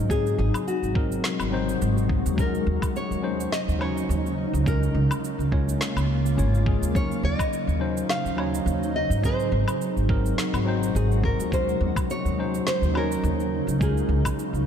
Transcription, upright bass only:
0.00 0.31 G#2 medium
0.38 0.48 G#1 loud
0.83 1.17 G#1 medium
1.40 1.74 G#1 medium
1.82 2.17 G#1 medium
2.26 2.60 D#2 medium
2.67 2.77 D#2 loud
3.11 3.45 D#2 medium
3.68 4.02 D#2 medium
4.09 4.45 D#2 medium
4.53 4.88 C#2 medium
4.94 5.05 C#2 medium
5.39 5.73 C#2 medium
5.96 6.39 C#2 medium
6.38 6.73 G#1 medium
6.82 7.16 D#2 medium
7.23 7.34 D#2 medium
7.67 8.02 D#2 medium
8.25 8.59 D#2 medium
8.66 9.02 D#2 medium
9.10 9.45 G#2 medium
9.52 9.62 G#1 loud
9.97 10.31 G#1 medium
10.53 10.88 G#1 medium
10.95 11.30 G#1 medium
11.39 11.73 D#2 medium
11.81 11.91 D#2 loud
12.25 12.59 D#2 medium
12.82 13.16 D#2 medium
13.23 13.59 D#2 medium
13.67 14.02 C#2 medium
14.09 14.19 C#2 medium
14.53 14.66 C#2 medium

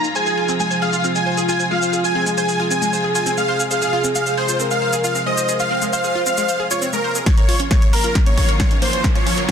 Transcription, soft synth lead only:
0.15 0.95 G#4 loud
1.04 1.62 F4 loud
1.71 2.13 F4 medium
2.15 3.62 G#4 loud
3.71 4.51 G#4 loud
4.60 5.17 A#4 loud
5.26 5.69 C5 loud
5.71 7.17 C5 loud

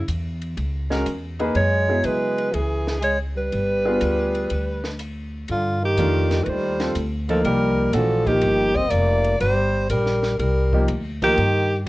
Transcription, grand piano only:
0.90 1.04 G#3 medium
0.90 1.04 C#4 medium
0.90 1.05 F#4 medium
0.90 1.05 A#4 medium
1.39 1.53 A#3 medium
1.39 1.54 D#4 medium
1.39 1.54 G#4 medium
1.39 1.54 B4 medium
1.88 2.50 F#3 medium
1.88 2.50 B3 medium
1.88 2.51 E4 medium
1.88 2.51 G#4 medium
3.85 4.47 B3 medium
3.85 4.47 D4 medium
3.85 4.48 F4 medium
3.85 4.47 G#4 medium
5.98 6.74 D#3 medium
5.98 6.74 A3 medium
5.98 6.74 D4 medium
5.98 6.74 F4 medium
6.80 6.94 G3 medium
6.80 6.94 C4 medium
6.80 6.94 F4 medium
6.80 6.94 A4 medium
7.29 7.42 F3 medium
7.29 7.43 A#3 medium
7.29 7.43 D#4 medium
7.29 7.91 A#4 medium
7.43 7.92 F3 medium
7.43 7.92 A#3 medium
7.43 7.92 D#4 medium
7.43 7.92 G4 medium
7.93 8.24 E3 medium
7.93 8.24 A3 medium
7.93 8.24 D4 medium
7.93 8.24 F#4 medium
8.26 8.69 F3 medium
8.26 8.69 A#3 medium
8.26 8.70 D#4 medium
8.26 8.70 G4 medium
10.73 10.87 F3 medium
10.73 10.87 A#3 medium
10.73 10.87 D#4 medium
10.73 10.87 G4 medium
11.22 11.36 F3 medium
11.22 11.36 A#3 medium
11.22 11.36 D#4 medium
11.22 11.36 A#4 medium

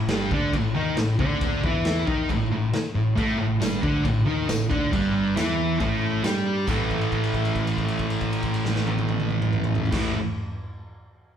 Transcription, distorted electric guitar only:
0.09 0.31 G2 loud
0.09 0.31 G3 loud
0.32 0.53 D3 medium
0.32 0.54 D4 loud
0.54 0.71 A2 medium
0.75 0.96 D#3 medium
0.75 0.97 D#4 medium
0.97 1.15 A2 medium
1.19 1.62 D3 loud
1.19 1.63 D4 loud
1.64 2.06 E3 medium
1.64 2.07 E4 loud
2.07 2.28 D#3 medium
2.07 2.29 D#4 loud
2.30 2.47 A2 medium
2.51 2.69 A2 medium
2.73 muted distorted electric guitar stroke medium
2.95 3.12 A2 medium
3.16 3.37 A2 medium
3.16 3.38 A3 loud
3.39 3.56 A2 medium
3.60 3.82 G2 loud
3.60 3.82 G3 loud
3.83 4.04 D3 medium
3.83 4.04 D4 loud
4.05 4.22 A2 medium
4.27 4.48 D#3 medium
4.27 4.48 D#4 loud
4.48 4.66 A2 medium
4.70 4.91 D3 loud
4.70 4.92 D4 medium
4.92 5.35 G2 medium
4.92 5.36 G3 loud
5.35 5.79 E3 loud
5.35 5.79 E4 loud
5.80 6.23 A2 medium
5.80 6.23 A3 loud
6.23 6.67 G3 medium
6.23 6.67 G4 loud
6.67 9.91 A2 medium
6.67 9.93 E3 medium
6.67 9.95 A3 loud
9.91 10.11 A2 medium
9.91 10.13 E3 loud
9.95 10.14 A3 loud

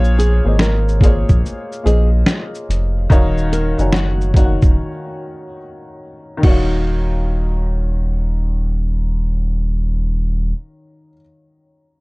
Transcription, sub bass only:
0.00 0.41 A#1 loud
0.45 1.24 G#1 medium
1.30 1.43 A#1 medium
1.85 2.23 A#1 loud
2.69 3.07 F1 medium
3.10 3.74 D#1 loud
3.78 4.58 F#1 medium
4.63 4.76 D#1 medium
6.43 10.53 D#1 loud

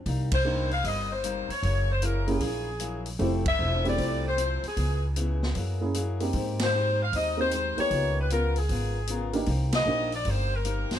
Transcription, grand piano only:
0.45 0.68 A#3 soft
0.45 0.69 D4 soft
0.45 0.69 D#4 soft
0.45 0.69 G4 medium
2.27 2.40 A#3 medium
2.27 2.40 C#4 medium
2.27 2.40 E4 medium
2.27 2.40 G#4 medium
3.19 3.43 A3 medium
3.19 3.43 C4 soft
3.19 3.44 E4 medium
3.19 3.44 G4 medium
3.84 4.34 A3 medium
3.84 4.35 C4 soft
3.84 4.35 E4 medium
3.84 4.35 G4 medium
5.81 5.93 A#3 soft
5.81 5.93 C#4 soft
5.81 5.93 E4 soft
5.81 5.94 G#4 medium
6.20 6.70 A#3 soft
6.20 6.70 C4 soft
6.20 6.71 D#4 soft
6.20 6.71 G4 medium
7.37 7.50 A#3 medium
7.37 7.50 C4 soft
7.37 7.50 D#4 soft
7.37 7.50 G4 medium
7.77 8.27 A#3 soft
7.77 8.27 B3 soft
7.77 8.28 D#4 soft
7.77 8.28 G4 medium
9.33 9.46 A#3 medium
9.33 9.46 D4 medium
9.33 9.46 D#4 medium
9.33 9.47 G4 medium
9.86 10.10 A#3 medium
9.86 10.10 D4 soft
9.86 10.11 D#4 soft
9.86 10.11 G4 medium

